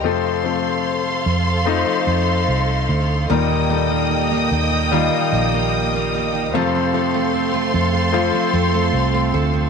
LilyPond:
<<
  \new Staff \with { instrumentName = "String section" } { \time 4/4 \key f \mixolydian \tempo 4 = 74 <a' c'' f'' c'''>1 | <bes ees'' g'' ees'''>1 | <a' c'' f'' c'''>1 | }
  \new Staff \with { instrumentName = "Steel-string acoustic guitar" } { \time 4/4 \key f \mixolydian r1 | <ees g'>16 ees'16 g'16 bes16 ees'16 bes16 g'16 ees'16 <ees g'>16 ees'16 g'16 bes16 ees'16 bes16 g'16 ees'16 | <f, a'>16 c'16 a'16 a16 c'16 a16 a'16 c'16 <f, a'>16 c'16 a'16 a16 c'16 a16 a'16 c'16 | }
  \new Staff \with { instrumentName = "Grand piano" } { \time 4/4 \key f \mixolydian <ees'' g''>16 r2. r8. | r1 | r1 | }
  \new Staff \with { instrumentName = "Grand piano" } { \time 4/4 \key f \mixolydian << { <f a c' a'>8 <f a c' a'>4. <f a c' ees'>2 | <g bes ees' bes'>8 <g bes ees' a'>4. <g bes ees' f'>2 | <f a c' a'>8 <f a c' a'>4. <f a c' f'>2 | } \\ { c4. r2 r8 | bes,4. r2 r8 | c4. r2 r8 | } >> }
  \new Staff \with { instrumentName = "Fingered electric bass" } { \clef bass \time 4/4 \key f \mixolydian f,4. f,8. r16 f,8 c,8 d,8 | ees,4. ees,8. r16 bes,,4. | f,4. f,8. r16 f,8 c,8 d,8 | }
>>